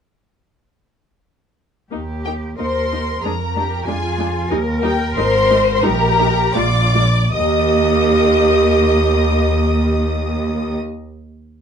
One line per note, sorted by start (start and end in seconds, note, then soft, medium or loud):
1.91 2.51 D#2 soft
1.91 2.00 A#3 soft
1.91 1.99 D#4 soft
1.91 2.55 G4 soft
2.24 2.34 A#3 soft
2.24 2.34 D#4 soft
2.24 2.32 G4 soft
2.24 2.33 G5 medium
2.59 3.15 D#2 medium
2.59 2.67 A#3 soft
2.59 2.67 D#4 soft
2.59 3.23 A#4 soft
2.59 3.22 C5 medium
2.59 3.22 C6 medium
2.91 3.00 A#3 soft
2.91 2.99 D#4 soft
3.22 3.79 F2 medium
3.22 3.32 G#3 soft
3.22 3.32 D4 soft
3.22 3.30 G#4 soft
3.22 3.85 A#4 medium
3.22 3.86 A#5 medium
3.54 3.64 G#3 soft
3.54 3.64 D4 soft
3.54 3.86 G4 soft
3.85 4.43 F2 medium
3.85 3.95 G#3 soft
3.85 3.95 D4 medium
3.85 4.50 F4 medium
3.85 4.50 G#4 medium
3.85 4.48 G#5 medium
4.18 4.26 G#3 medium
4.18 4.26 D4 soft
4.49 5.09 D#2 medium
4.49 4.59 G3 medium
4.49 4.59 D#4 medium
4.49 5.83 A#4 medium
4.82 4.91 G3 medium
4.82 4.91 D#4 medium
4.82 4.91 G4 medium
4.82 5.14 G5 medium
5.15 5.76 G#1 medium
5.15 5.25 G#3 medium
5.15 5.25 D#4 medium
5.15 5.83 C5 medium
5.15 5.73 C6 loud
5.49 5.58 G#3 medium
5.49 5.57 D#4 medium
5.74 5.83 C6 medium
5.81 6.46 A#1 medium
5.81 5.91 G3 medium
5.81 5.90 D#4 medium
5.81 6.54 G4 medium
5.81 6.55 A#4 loud
5.81 6.54 A#5 loud
6.19 6.27 G3 medium
6.19 6.27 D#4 medium
6.54 7.25 A#1 medium
6.54 6.63 G#3 medium
6.54 6.94 F4 medium
6.54 6.63 F4 medium
6.54 7.33 D5 medium
6.54 7.34 D6 loud
6.94 7.02 G#3 medium
6.94 7.02 F4 medium
7.33 10.75 D#2 medium
7.33 10.76 A#3 medium
7.33 10.75 G4 medium
7.33 10.75 D#5 medium
7.33 10.74 D#6 medium